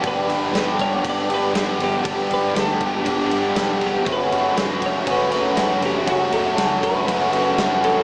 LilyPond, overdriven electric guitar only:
\new Staff \with { instrumentName = "Overdriven electric guitar" } { \time 4/4 \key g \lydian \tempo 4 = 119 <g, d g b d' g'>4 <g b d' g'>4 <g, d g b d' g'>8 <g b d' g'>8 <g b d' g'>4 | <g, d g b d' g'>4 <g b d' g'>4 <g, d g b d' g'>8 <g b d' g'>8 <g b d' g'>4 | <fis, cis fis a cis' fis'>4 <fis a cis' fis'>4 <fis, cis fis a cis' fis'>8 <fis a cis' fis'>8 <fis a cis' fis'>4 | <fis, cis fis a cis' fis'>4 <fis a cis' fis'>4 <fis, cis fis a cis' fis'>8 <fis a cis' fis'>8 <fis a cis' fis'>4 | }